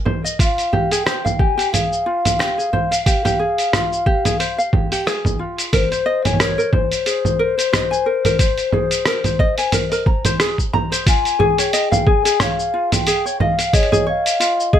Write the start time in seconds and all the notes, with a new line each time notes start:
0.05 C5, low conga
0.24 D#5, shaker
0.39 F4 F5, kick, open hi-hat, shaker
0.58 open hi-hat, shaker
0.73 G4, low conga
0.91 G#4 G5, open hi-hat, shaker
1.06 C5, cross-stick, open hi-hat, shaker
1.25 F5, low conga, shaker
1.39 G4 G#5, kick
1.58 G4, open hi-hat, shaker
1.72 G#4 F5, open hi-hat, low conga, shaker
1.93 shaker
2.06 F4
2.25 open hi-hat, low conga, shaker
2.39 G4, cross-stick, open hi-hat, shaker
2.58 G#4, shaker
2.73 C5, low conga
2.91 F5, open hi-hat, shaker
3.05 G4 F5, kick, open hi-hat, shaker
3.25 G4, open hi-hat, low conga, shaker
3.39 G#4
3.58 open hi-hat, shaker
3.73 F4, cross-stick, open hi-hat, low conga, shaker
3.93 shaker
4.06 G4, kick
4.25 G#4, open hi-hat, low conga, shaker
4.40 C5, open hi-hat, shaker
4.58 F5, shaker
4.73 G4, kick, low conga
4.92 G4, open hi-hat, shaker
5.07 G#4, cross-stick, open hi-hat, shaker
5.25 kick, low conga, shaker
5.39 F4
5.58 open hi-hat, shaker
5.73 A#4 C5, kick, open hi-hat, low conga, shaker
5.91 C5, open hi-hat, shaker
6.06 D#5
6.25 C#5 G#5, open hi-hat, low conga, shaker
6.33 low conga
6.39 A#4, cross-stick, open hi-hat, low conga, shaker
6.49 low conga
6.58 A#4, shaker
6.73 C5, kick, low conga
6.92 open hi-hat, shaker
7.06 G#4, open hi-hat, shaker
7.25 low conga, shaker
7.39 A#4
7.58 C5, open hi-hat, shaker
7.73 D#5, cross-stick, open hi-hat, low conga, shaker
7.91 G#5, shaker
8.06 A#4
8.25 A#4, open hi-hat, low conga, shaker
8.39 C5, kick, open hi-hat, shaker
8.58 open hi-hat, shaker
8.72 G#4, low conga
8.91 open hi-hat, shaker
9.05 A#4, cross-stick, open hi-hat, shaker
9.24 C5, open hi-hat, low conga, shaker
9.39 D#5, kick
9.58 G#5, open hi-hat, shaker
9.72 A#4, open hi-hat, low conga, shaker
9.92 A#4, open hi-hat, shaker
10.06 A#5, kick
10.25 C5, open hi-hat, low conga, shaker
10.40 G#4, cross-stick, open hi-hat, shaker
10.58 kick, shaker
10.73 A#5, low conga
10.92 C5, open hi-hat, shaker
11.06 F4 G#5, kick, open hi-hat, shaker
11.25 open hi-hat, shaker
11.39 G#4, low conga
11.58 C#5 G5, open hi-hat, shaker
11.73 D#5, open hi-hat, shaker
11.92 F5, low conga, shaker
12.07 G#4 G#5, kick
12.25 G#4, open hi-hat, shaker
12.40 C#5 F5, cross-stick, open hi-hat, low conga, shaker
12.59 shaker
12.74 F4
12.92 G5, open hi-hat, low conga, shaker
13.07 G#4, open hi-hat, shaker
13.26 C#5, shaker
13.40 D#5 F5, low conga
13.59 F5, open hi-hat, shaker
13.73 G#4 C#5 D#5, kick, open hi-hat, shaker
13.83 open hi-hat
13.92 G#4, low conga, shaker
14.07 C#5 F5
14.26 open hi-hat, shaker
14.40 F4, open hi-hat, shaker
14.60 shaker
14.73 G#4 D#5, kick